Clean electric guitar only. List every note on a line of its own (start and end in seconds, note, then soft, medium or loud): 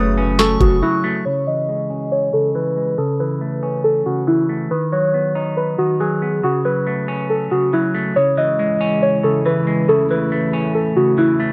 0.00 0.59 C#3 medium
0.00 0.81 F#3 medium
0.00 1.03 A3 medium
0.18 1.25 C#4 loud
0.61 1.24 C#3 medium
0.83 1.26 F#3 medium
1.04 1.25 A3 medium
1.26 2.32 C#3 medium
1.47 2.54 E3 medium
1.69 2.75 G#3 medium
1.90 2.98 C#4 loud
2.33 2.97 C#3 medium
2.55 2.98 E3 medium
2.76 2.98 G#3 medium
2.98 4.05 C#3 medium
3.20 4.26 E3 medium
3.41 4.48 A3 medium
3.63 4.71 C#4 medium
4.06 4.71 C#3 medium
4.27 4.71 E3 medium
4.49 4.71 A3 medium
4.71 5.77 D#3 medium
4.92 5.99 F#3 medium
5.14 6.21 B3 medium
5.35 6.43 D#4 medium
5.79 6.43 D#3 medium
6.00 6.43 F#3 medium
6.22 6.43 B3 medium
6.43 7.50 C#3 medium
6.65 7.72 F#3 medium
6.87 7.93 A3 medium
7.08 8.16 C#4 medium
7.51 8.15 C#3 medium
7.73 8.16 F#3 medium
7.94 8.16 A3 medium
8.16 9.22 C#3 medium
8.37 9.44 E3 medium
8.59 9.66 G#3 medium
8.81 9.89 C#4 loud
9.23 9.87 C#3 medium
9.46 9.89 E3 medium
9.67 9.89 G#3 medium
9.89 10.96 C#3 medium
10.11 11.17 E3 medium
10.32 11.38 A3 medium
10.53 11.53 C#4 medium
10.97 11.53 C#3 medium
11.18 11.53 E3 medium
11.40 11.53 A3 medium